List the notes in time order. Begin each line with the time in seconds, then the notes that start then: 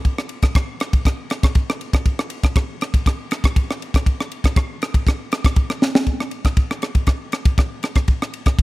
0.05 kick, ride
0.18 cross-stick
0.29 ride
0.42 kick, cross-stick, ride
0.55 kick, cross-stick, ride
0.80 cross-stick, ride
0.93 kick, ride
1.05 kick, cross-stick, ride
1.30 cross-stick, ride
1.43 kick, cross-stick, ride
1.55 kick, ride
1.70 cross-stick
1.81 ride
1.93 kick, cross-stick, ride
2.06 kick, ride
2.19 cross-stick
2.30 ride
2.43 kick, cross-stick, ride
2.56 kick, cross-stick, ride
2.81 cross-stick, ride
2.94 kick, ride
3.06 kick, cross-stick, ride
3.31 cross-stick, ride
3.44 kick, cross-stick, ride
3.56 kick, ride
3.71 cross-stick
3.82 ride
3.94 kick, cross-stick, ride
4.06 kick, ride
4.20 cross-stick
4.32 ride
4.44 kick, cross-stick, ride
4.56 kick, cross-stick, ride
4.82 cross-stick, ride
4.94 kick, ride
5.07 kick, cross-stick, ride
5.32 cross-stick, ride
5.44 kick, cross-stick, ride
5.56 kick, ride
5.70 cross-stick
5.82 snare
5.95 snare
6.07 kick, ride
6.20 cross-stick
6.31 ride
6.45 kick, cross-stick, ride
6.57 kick, ride
6.71 cross-stick
6.82 cross-stick, ride
6.95 kick, ride
7.07 kick, cross-stick, ride
7.32 cross-stick, ride
7.45 kick, ride
7.58 kick, cross-stick, ride
7.83 cross-stick, ride
7.95 kick, cross-stick, ride
8.08 kick, ride
8.22 cross-stick
8.34 ride
8.46 kick, cross-stick, ride
8.59 kick, ride